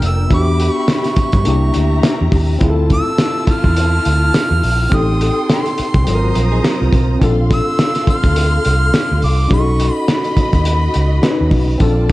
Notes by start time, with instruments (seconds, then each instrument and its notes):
Already playing: tine electric piano A#3 D4 F4 A4, string section D4 A#4 G5
0.02 fingered electric bass F1, harmonica E6, closed hi-hat
0.29 fingered electric bass E2, tine electric piano B3 D4 F#4, string section G4 E5 B5, kick, closed hi-hat
0.33 tine electric piano G4, harmonica D6
0.60 closed hi-hat
0.72 harmonica C#6
0.88 harmonica C#6, snare, closed hi-hat
1.04 snare, closed hi-hat
1.16 muted fingered electric bass stroke, kick, closed hi-hat
1.32 fingered electric bass G2, kick, closed hi-hat
1.44 fingered electric bass C2, tine electric piano A#3 D4 E4, string section G4 E5 A#5, closed hi-hat
1.48 tine electric piano G4
1.74 fingered electric bass D2, closed hi-hat
2.03 snare, closed hi-hat
2.21 fingered electric bass E2
2.32 fingered electric bass D#2, kick, open hi-hat
2.59 fingered electric bass D2, tine electric piano C4 E4 F4, string section E4 F4 A5, kick, closed hi-hat
2.64 tine electric piano G#4
2.70 tine electric piano A4
2.90 harmonica E6, kick, closed hi-hat
3.18 snare, closed hi-hat
3.47 harmonica F6, muted fingered electric bass stroke, kick, closed hi-hat
3.64 fingered electric bass E2, kick
3.76 closed hi-hat
4.05 fingered electric bass D2, closed hi-hat
4.34 snare, closed hi-hat
4.51 fingered electric bass E2
4.63 fingered electric bass A#1, open hi-hat
4.89 fingered electric bass A1, tine electric piano C4 D#4 G4, string section A4 G5 C6, kick, closed hi-hat
4.94 tine electric piano A4, harmonica D#6
5.21 closed hi-hat
5.50 harmonica C6, snare, closed hi-hat
5.66 closed hi-hat
5.78 muted fingered electric bass stroke, closed hi-hat
5.94 fingered electric bass C2, kick, closed hi-hat
6.04 fingered electric bass G#1, tine electric piano F#3 C4 F4, string section C5 A#5 D#6, closed hi-hat
6.09 tine electric piano A4
6.15 tine electric piano A#4
6.23 clean electric guitar F#4 C5
6.35 fingered electric bass A#1, clean electric guitar F4 A#4, closed hi-hat
6.52 clean electric guitar D#4 G#4
6.63 clean electric guitar C4 F#4, snare, closed hi-hat
6.80 fingered electric bass C2, clean electric guitar C4 F4
6.93 fingered electric bass B1, kick, closed hi-hat
7.19 fingered electric bass A#1, tine electric piano C4 D4 F4, string section A4 F5 C6, kick, closed hi-hat
7.24 tine electric piano A4
7.51 harmonica E6, kick, closed hi-hat
7.79 snare, closed hi-hat
7.95 snare, closed hi-hat
8.07 harmonica F6, muted fingered electric bass stroke, kick, closed hi-hat
8.23 fingered electric bass D2, kick, closed hi-hat
8.36 closed hi-hat
8.65 fingered electric bass C2, closed hi-hat
8.94 snare, closed hi-hat
9.11 fingered electric bass D2
9.22 fingered electric bass C2, harmonica D6, open hi-hat
9.48 fingered electric bass B1, tine electric piano C#4 D#4 F#4, string section F#4 D#5 B5, kick, closed hi-hat
9.53 tine electric piano G#4, harmonica C#6
9.59 tine electric piano A4
9.80 closed hi-hat
9.94 harmonica B5
10.08 harmonica B5, snare, closed hi-hat
10.24 closed hi-hat
10.37 muted fingered electric bass stroke, kick, closed hi-hat
10.53 fingered electric bass D#2, kick, closed hi-hat
10.65 closed hi-hat
10.94 fingered electric bass C#2, closed hi-hat
11.22 tine electric piano C#4 D#4 F#4 B4, snare, closed hi-hat
11.41 fingered electric bass D#2
11.51 fingered electric bass B1, kick, open hi-hat
11.78 fingered electric bass A#1, tine electric piano C4 D4 F4, string section F4 D5 A5, kick, closed hi-hat
11.83 tine electric piano A4